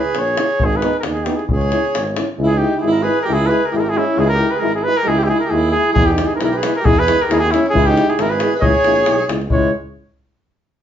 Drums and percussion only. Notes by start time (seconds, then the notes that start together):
0.05 davul high
0.15 davul high
0.28 davul high
0.37 davul high
0.51 davul high
0.60 davul low
0.73 davul high
0.82 davul high
0.93 davul high
1.03 davul high
1.17 davul high
1.26 davul high
1.39 davul high
1.49 davul low
1.61 davul high
1.72 davul high
1.85 davul high
1.95 davul high
2.07 davul high
2.17 davul high
5.96 davul low
6.08 davul high
6.18 davul high
6.31 davul high
6.41 davul high
6.53 davul high
6.63 davul high
6.75 davul high
6.85 davul low
6.99 davul high
7.08 davul high
7.20 davul high
7.31 davul high
7.44 davul high
7.54 davul high
7.66 davul high
7.76 davul low
7.88 davul high
7.97 davul high
8.10 davul high
8.19 davul high
8.32 davul high
8.40 davul high
8.53 davul high
8.62 davul low
8.74 davul high
8.84 davul high
8.96 davul high
9.06 davul high
9.19 davul high
9.29 davul high
9.42 davul high
9.50 davul low